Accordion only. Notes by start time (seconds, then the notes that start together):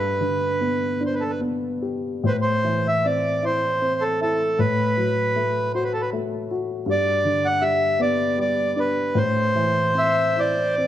Already playing: B4
1.06 C5
1.15 B4
1.21 A4
1.30 B4
2.27 B4 C5
2.42 C5
2.88 E5
3.05 D5
3.45 C5
4.01 A4
4.22 A4
4.59 B4
5.75 C5
5.84 B4
5.93 A4
6.02 B4
6.91 D5
7.45 F#5
7.61 E5
8.02 D5
8.41 D5
8.80 B4
9.17 C5
9.98 E5
10.40 D5